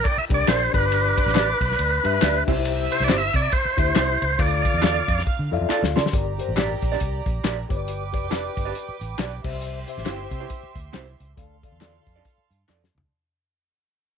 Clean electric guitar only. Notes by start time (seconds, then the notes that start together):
0.47 D4 G4 A#4 D5
1.35 D4 G4 B4 D5
2.22 D4 G4 B4 D5
2.48 C4 E4 G4 C5
3.08 C4 E4 G4 C5
3.95 C4 E4 G4 C5
4.82 D4 F4 A4 D5
5.69 D4 F4 A4 D5
5.96 D4 F4 A4 D5
6.57 D4 G4 A#4 D5
6.92 D4 G4 A#4 D5
7.44 D4 G4 A#4 D5
8.31 D4 G4 B4 D5
8.65 D4 G4 B4 D5
9.18 D4 G4 B4 D5
10.05 C4 E4 G4 C5
10.40 C4 E4 G4 C5
10.93 C4 E4 G4 C5
11.80 D4 F4 A4 D5
12.16 D4 F4 A4 D5
12.68 D4 F4 A4 D5